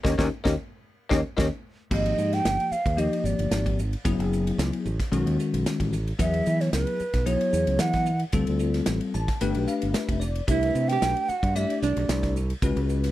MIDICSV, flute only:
0, 0, Header, 1, 2, 480
1, 0, Start_track
1, 0, Tempo, 535236
1, 1714, Time_signature, 4, 2, 24, 8
1, 11762, End_track
2, 0, Start_track
2, 0, Title_t, "Flute"
2, 0, Program_c, 0, 73
2, 1741, Note_on_c, 0, 75, 82
2, 2095, Note_on_c, 0, 79, 98
2, 2109, Note_off_c, 0, 75, 0
2, 2438, Note_on_c, 0, 77, 81
2, 2452, Note_off_c, 0, 79, 0
2, 2682, Note_on_c, 0, 75, 83
2, 2695, Note_off_c, 0, 77, 0
2, 2917, Note_on_c, 0, 74, 71
2, 2931, Note_off_c, 0, 75, 0
2, 3394, Note_off_c, 0, 74, 0
2, 5567, Note_on_c, 0, 76, 84
2, 5928, Note_on_c, 0, 73, 73
2, 5941, Note_off_c, 0, 76, 0
2, 6034, Note_off_c, 0, 73, 0
2, 6039, Note_on_c, 0, 71, 81
2, 6513, Note_on_c, 0, 73, 90
2, 6526, Note_off_c, 0, 71, 0
2, 6995, Note_on_c, 0, 78, 88
2, 7009, Note_off_c, 0, 73, 0
2, 7363, Note_off_c, 0, 78, 0
2, 9405, Note_on_c, 0, 76, 89
2, 9762, Note_on_c, 0, 79, 100
2, 9776, Note_off_c, 0, 76, 0
2, 10121, Note_on_c, 0, 78, 87
2, 10134, Note_off_c, 0, 79, 0
2, 10366, Note_on_c, 0, 76, 82
2, 10380, Note_off_c, 0, 78, 0
2, 10596, Note_off_c, 0, 76, 0
2, 10602, Note_on_c, 0, 74, 74
2, 11049, Note_off_c, 0, 74, 0
2, 11762, End_track
0, 0, End_of_file